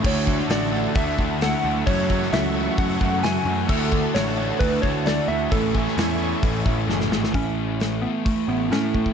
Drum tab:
CC |x---------------|----------------|x---------------|----------------|
HH |----o---o---o---|o---o---o---o---|----o---o---o---|o---o---o-------|
SD |---oo-------o---|---oo-------o---|----o-------o---|---oo-------oooo|
BD |o-o-----o-o-----|o-o-----o-o-----|o-o-----o-o-----|o-o-----o-o-----|

CC |----------------|
HH |o---o---o---o---|
SD |----o-------o---|
BD |o-------o-----oo|